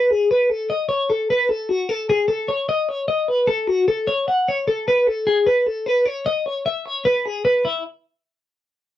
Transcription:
0, 0, Header, 1, 2, 480
1, 0, Start_track
1, 0, Key_signature, 4, "major"
1, 0, Tempo, 396563
1, 603, Time_signature, 9, 3, 24, 8
1, 10863, End_track
2, 0, Start_track
2, 0, Title_t, "Clean electric guitar"
2, 0, Program_c, 0, 27
2, 0, Note_on_c, 0, 71, 93
2, 131, Note_off_c, 0, 71, 0
2, 131, Note_on_c, 0, 68, 76
2, 367, Note_off_c, 0, 68, 0
2, 375, Note_on_c, 0, 71, 78
2, 603, Note_off_c, 0, 71, 0
2, 603, Note_on_c, 0, 69, 97
2, 843, Note_off_c, 0, 69, 0
2, 844, Note_on_c, 0, 75, 79
2, 1068, Note_off_c, 0, 75, 0
2, 1073, Note_on_c, 0, 73, 93
2, 1319, Note_off_c, 0, 73, 0
2, 1328, Note_on_c, 0, 69, 88
2, 1566, Note_off_c, 0, 69, 0
2, 1577, Note_on_c, 0, 71, 102
2, 1805, Note_off_c, 0, 71, 0
2, 1805, Note_on_c, 0, 69, 83
2, 2046, Note_off_c, 0, 69, 0
2, 2046, Note_on_c, 0, 66, 85
2, 2287, Note_off_c, 0, 66, 0
2, 2287, Note_on_c, 0, 69, 84
2, 2526, Note_off_c, 0, 69, 0
2, 2536, Note_on_c, 0, 68, 82
2, 2756, Note_off_c, 0, 68, 0
2, 2761, Note_on_c, 0, 69, 89
2, 3003, Note_off_c, 0, 69, 0
2, 3007, Note_on_c, 0, 73, 78
2, 3247, Note_off_c, 0, 73, 0
2, 3254, Note_on_c, 0, 75, 96
2, 3495, Note_off_c, 0, 75, 0
2, 3495, Note_on_c, 0, 73, 85
2, 3725, Note_off_c, 0, 73, 0
2, 3730, Note_on_c, 0, 75, 92
2, 3974, Note_off_c, 0, 75, 0
2, 3974, Note_on_c, 0, 71, 78
2, 4205, Note_on_c, 0, 69, 87
2, 4211, Note_off_c, 0, 71, 0
2, 4448, Note_off_c, 0, 69, 0
2, 4448, Note_on_c, 0, 66, 89
2, 4688, Note_off_c, 0, 66, 0
2, 4695, Note_on_c, 0, 69, 83
2, 4931, Note_on_c, 0, 73, 106
2, 4932, Note_off_c, 0, 69, 0
2, 5170, Note_off_c, 0, 73, 0
2, 5179, Note_on_c, 0, 78, 86
2, 5414, Note_off_c, 0, 78, 0
2, 5428, Note_on_c, 0, 73, 90
2, 5655, Note_off_c, 0, 73, 0
2, 5659, Note_on_c, 0, 69, 92
2, 5894, Note_off_c, 0, 69, 0
2, 5905, Note_on_c, 0, 71, 92
2, 6140, Note_off_c, 0, 71, 0
2, 6140, Note_on_c, 0, 69, 84
2, 6375, Note_off_c, 0, 69, 0
2, 6376, Note_on_c, 0, 68, 89
2, 6613, Note_off_c, 0, 68, 0
2, 6614, Note_on_c, 0, 71, 88
2, 6858, Note_off_c, 0, 71, 0
2, 6858, Note_on_c, 0, 69, 77
2, 7096, Note_off_c, 0, 69, 0
2, 7096, Note_on_c, 0, 71, 91
2, 7329, Note_off_c, 0, 71, 0
2, 7329, Note_on_c, 0, 73, 77
2, 7569, Note_off_c, 0, 73, 0
2, 7576, Note_on_c, 0, 75, 89
2, 7819, Note_off_c, 0, 75, 0
2, 7819, Note_on_c, 0, 73, 86
2, 8054, Note_off_c, 0, 73, 0
2, 8059, Note_on_c, 0, 76, 90
2, 8299, Note_off_c, 0, 76, 0
2, 8299, Note_on_c, 0, 73, 81
2, 8533, Note_off_c, 0, 73, 0
2, 8535, Note_on_c, 0, 71, 83
2, 8783, Note_off_c, 0, 71, 0
2, 8783, Note_on_c, 0, 68, 84
2, 9010, Note_off_c, 0, 68, 0
2, 9015, Note_on_c, 0, 71, 76
2, 9251, Note_off_c, 0, 71, 0
2, 9258, Note_on_c, 0, 64, 84
2, 9475, Note_off_c, 0, 64, 0
2, 10863, End_track
0, 0, End_of_file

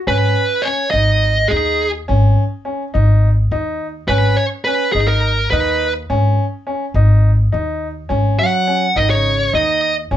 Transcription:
0, 0, Header, 1, 5, 480
1, 0, Start_track
1, 0, Key_signature, 5, "minor"
1, 0, Tempo, 573614
1, 57, Time_signature, 7, 3, 24, 8
1, 8509, End_track
2, 0, Start_track
2, 0, Title_t, "Lead electric guitar"
2, 0, Program_c, 0, 29
2, 66, Note_on_c, 0, 71, 81
2, 519, Note_on_c, 0, 73, 85
2, 557, Note_off_c, 0, 71, 0
2, 755, Note_off_c, 0, 73, 0
2, 758, Note_on_c, 0, 75, 87
2, 1239, Note_on_c, 0, 68, 73
2, 1263, Note_off_c, 0, 75, 0
2, 1583, Note_off_c, 0, 68, 0
2, 3414, Note_on_c, 0, 71, 92
2, 3639, Note_off_c, 0, 71, 0
2, 3653, Note_on_c, 0, 73, 79
2, 3719, Note_off_c, 0, 73, 0
2, 3887, Note_on_c, 0, 71, 88
2, 4116, Note_off_c, 0, 71, 0
2, 4120, Note_on_c, 0, 68, 82
2, 4240, Note_off_c, 0, 68, 0
2, 4247, Note_on_c, 0, 70, 73
2, 4603, Note_off_c, 0, 70, 0
2, 4607, Note_on_c, 0, 71, 73
2, 4947, Note_off_c, 0, 71, 0
2, 7022, Note_on_c, 0, 78, 84
2, 7507, Note_on_c, 0, 75, 89
2, 7516, Note_off_c, 0, 78, 0
2, 7612, Note_off_c, 0, 75, 0
2, 7615, Note_on_c, 0, 73, 68
2, 7953, Note_off_c, 0, 73, 0
2, 7990, Note_on_c, 0, 75, 78
2, 8321, Note_off_c, 0, 75, 0
2, 8509, End_track
3, 0, Start_track
3, 0, Title_t, "Grand piano"
3, 0, Program_c, 1, 0
3, 58, Note_on_c, 1, 61, 77
3, 340, Note_off_c, 1, 61, 0
3, 542, Note_on_c, 1, 61, 63
3, 682, Note_off_c, 1, 61, 0
3, 781, Note_on_c, 1, 63, 73
3, 1062, Note_off_c, 1, 63, 0
3, 1257, Note_on_c, 1, 63, 73
3, 1539, Note_off_c, 1, 63, 0
3, 1742, Note_on_c, 1, 61, 84
3, 2023, Note_off_c, 1, 61, 0
3, 2217, Note_on_c, 1, 61, 65
3, 2359, Note_off_c, 1, 61, 0
3, 2458, Note_on_c, 1, 63, 74
3, 2740, Note_off_c, 1, 63, 0
3, 2943, Note_on_c, 1, 63, 76
3, 3224, Note_off_c, 1, 63, 0
3, 3421, Note_on_c, 1, 61, 84
3, 3702, Note_off_c, 1, 61, 0
3, 3902, Note_on_c, 1, 61, 68
3, 4042, Note_off_c, 1, 61, 0
3, 4145, Note_on_c, 1, 63, 69
3, 4425, Note_off_c, 1, 63, 0
3, 4621, Note_on_c, 1, 63, 78
3, 4902, Note_off_c, 1, 63, 0
3, 5102, Note_on_c, 1, 61, 84
3, 5383, Note_off_c, 1, 61, 0
3, 5578, Note_on_c, 1, 61, 66
3, 5720, Note_off_c, 1, 61, 0
3, 5819, Note_on_c, 1, 63, 72
3, 6101, Note_off_c, 1, 63, 0
3, 6296, Note_on_c, 1, 63, 71
3, 6579, Note_off_c, 1, 63, 0
3, 6770, Note_on_c, 1, 61, 81
3, 7055, Note_off_c, 1, 61, 0
3, 7258, Note_on_c, 1, 61, 66
3, 7400, Note_off_c, 1, 61, 0
3, 7496, Note_on_c, 1, 63, 70
3, 7779, Note_off_c, 1, 63, 0
3, 7977, Note_on_c, 1, 63, 82
3, 8260, Note_off_c, 1, 63, 0
3, 8461, Note_on_c, 1, 61, 82
3, 8509, Note_off_c, 1, 61, 0
3, 8509, End_track
4, 0, Start_track
4, 0, Title_t, "Trombone"
4, 0, Program_c, 2, 57
4, 7029, Note_on_c, 2, 54, 84
4, 7471, Note_off_c, 2, 54, 0
4, 7523, Note_on_c, 2, 51, 73
4, 7624, Note_off_c, 2, 51, 0
4, 7640, Note_on_c, 2, 49, 65
4, 7966, Note_off_c, 2, 49, 0
4, 8011, Note_on_c, 2, 51, 63
4, 8332, Note_off_c, 2, 51, 0
4, 8509, End_track
5, 0, Start_track
5, 0, Title_t, "Upright bass"
5, 0, Program_c, 3, 32
5, 59, Note_on_c, 3, 32, 88
5, 272, Note_off_c, 3, 32, 0
5, 783, Note_on_c, 3, 32, 84
5, 1209, Note_off_c, 3, 32, 0
5, 1268, Note_on_c, 3, 39, 90
5, 1692, Note_off_c, 3, 39, 0
5, 1750, Note_on_c, 3, 32, 84
5, 1959, Note_off_c, 3, 32, 0
5, 2468, Note_on_c, 3, 32, 93
5, 2892, Note_off_c, 3, 32, 0
5, 2940, Note_on_c, 3, 39, 90
5, 3368, Note_off_c, 3, 39, 0
5, 3422, Note_on_c, 3, 32, 92
5, 3634, Note_off_c, 3, 32, 0
5, 4139, Note_on_c, 3, 32, 81
5, 4567, Note_off_c, 3, 32, 0
5, 4620, Note_on_c, 3, 39, 97
5, 5048, Note_off_c, 3, 39, 0
5, 5103, Note_on_c, 3, 32, 89
5, 5315, Note_off_c, 3, 32, 0
5, 5810, Note_on_c, 3, 32, 94
5, 6242, Note_off_c, 3, 32, 0
5, 6308, Note_on_c, 3, 39, 90
5, 6733, Note_off_c, 3, 39, 0
5, 6780, Note_on_c, 3, 32, 88
5, 6994, Note_off_c, 3, 32, 0
5, 7498, Note_on_c, 3, 32, 82
5, 7928, Note_off_c, 3, 32, 0
5, 7980, Note_on_c, 3, 39, 97
5, 8409, Note_off_c, 3, 39, 0
5, 8461, Note_on_c, 3, 32, 82
5, 8509, Note_off_c, 3, 32, 0
5, 8509, End_track
0, 0, End_of_file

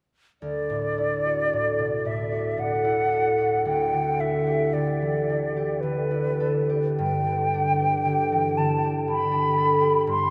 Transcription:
0, 0, Header, 1, 3, 480
1, 0, Start_track
1, 0, Key_signature, 2, "major"
1, 0, Tempo, 1109057
1, 178, Time_signature, 3, 2, 24, 8
1, 657, Tempo, 1073345
1, 2577, Tempo, 1165049
1, 3057, Tempo, 1073345
1, 3537, Tempo, 1006711
1, 4611, End_track
2, 0, Start_track
2, 0, Title_t, "Flute"
2, 0, Program_c, 0, 73
2, 181, Note_on_c, 0, 74, 61
2, 900, Note_on_c, 0, 76, 47
2, 907, Note_off_c, 0, 74, 0
2, 1138, Note_on_c, 0, 78, 53
2, 1144, Note_off_c, 0, 76, 0
2, 1613, Note_off_c, 0, 78, 0
2, 1616, Note_on_c, 0, 79, 52
2, 1856, Note_on_c, 0, 76, 52
2, 1863, Note_off_c, 0, 79, 0
2, 2094, Note_on_c, 0, 74, 47
2, 2101, Note_off_c, 0, 76, 0
2, 2574, Note_on_c, 0, 71, 50
2, 2580, Note_off_c, 0, 74, 0
2, 2942, Note_off_c, 0, 71, 0
2, 3056, Note_on_c, 0, 79, 62
2, 3786, Note_on_c, 0, 81, 51
2, 3793, Note_off_c, 0, 79, 0
2, 3943, Note_off_c, 0, 81, 0
2, 4031, Note_on_c, 0, 83, 59
2, 4480, Note_off_c, 0, 83, 0
2, 4511, Note_on_c, 0, 84, 63
2, 4611, Note_off_c, 0, 84, 0
2, 4611, End_track
3, 0, Start_track
3, 0, Title_t, "Harp"
3, 0, Program_c, 1, 46
3, 181, Note_on_c, 1, 38, 34
3, 301, Note_on_c, 1, 45, 28
3, 424, Note_on_c, 1, 64, 28
3, 546, Note_on_c, 1, 66, 32
3, 657, Note_off_c, 1, 45, 0
3, 662, Note_on_c, 1, 45, 30
3, 777, Note_on_c, 1, 47, 28
3, 890, Note_off_c, 1, 45, 0
3, 896, Note_on_c, 1, 45, 27
3, 979, Note_off_c, 1, 47, 0
3, 1010, Note_off_c, 1, 66, 0
3, 1016, Note_on_c, 1, 66, 30
3, 1126, Note_off_c, 1, 45, 0
3, 1131, Note_on_c, 1, 45, 29
3, 1245, Note_off_c, 1, 64, 0
3, 1250, Note_on_c, 1, 64, 29
3, 1373, Note_on_c, 1, 69, 28
3, 1486, Note_off_c, 1, 66, 0
3, 1491, Note_on_c, 1, 66, 30
3, 1606, Note_off_c, 1, 38, 0
3, 1611, Note_on_c, 1, 38, 34
3, 1630, Note_off_c, 1, 45, 0
3, 1736, Note_on_c, 1, 50, 26
3, 1853, Note_off_c, 1, 64, 0
3, 1858, Note_on_c, 1, 64, 29
3, 1976, Note_on_c, 1, 67, 33
3, 2094, Note_off_c, 1, 50, 0
3, 2100, Note_on_c, 1, 50, 30
3, 2223, Note_on_c, 1, 52, 28
3, 2341, Note_off_c, 1, 50, 0
3, 2346, Note_on_c, 1, 50, 29
3, 2423, Note_off_c, 1, 52, 0
3, 2462, Note_off_c, 1, 67, 0
3, 2467, Note_on_c, 1, 67, 29
3, 2578, Note_off_c, 1, 50, 0
3, 2583, Note_on_c, 1, 50, 32
3, 2695, Note_off_c, 1, 64, 0
3, 2700, Note_on_c, 1, 64, 28
3, 2815, Note_off_c, 1, 69, 0
3, 2820, Note_on_c, 1, 69, 30
3, 2936, Note_off_c, 1, 67, 0
3, 2941, Note_on_c, 1, 67, 32
3, 3061, Note_on_c, 1, 43, 37
3, 3075, Note_off_c, 1, 38, 0
3, 3076, Note_off_c, 1, 66, 0
3, 3080, Note_off_c, 1, 50, 0
3, 3081, Note_off_c, 1, 64, 0
3, 3186, Note_on_c, 1, 50, 30
3, 3308, Note_on_c, 1, 62, 32
3, 3418, Note_off_c, 1, 67, 0
3, 3423, Note_on_c, 1, 67, 33
3, 3533, Note_off_c, 1, 50, 0
3, 3538, Note_on_c, 1, 50, 33
3, 3666, Note_on_c, 1, 52, 29
3, 3784, Note_off_c, 1, 50, 0
3, 3790, Note_on_c, 1, 50, 29
3, 3872, Note_off_c, 1, 52, 0
3, 3905, Note_off_c, 1, 67, 0
3, 3911, Note_on_c, 1, 67, 30
3, 4021, Note_off_c, 1, 50, 0
3, 4026, Note_on_c, 1, 50, 29
3, 4135, Note_off_c, 1, 62, 0
3, 4141, Note_on_c, 1, 62, 32
3, 4258, Note_off_c, 1, 69, 0
3, 4264, Note_on_c, 1, 69, 33
3, 4372, Note_off_c, 1, 67, 0
3, 4377, Note_on_c, 1, 67, 34
3, 4495, Note_off_c, 1, 43, 0
3, 4501, Note_on_c, 1, 43, 44
3, 4515, Note_off_c, 1, 50, 0
3, 4611, Note_off_c, 1, 43, 0
3, 4611, Note_off_c, 1, 62, 0
3, 4611, Note_off_c, 1, 67, 0
3, 4611, Note_off_c, 1, 69, 0
3, 4611, End_track
0, 0, End_of_file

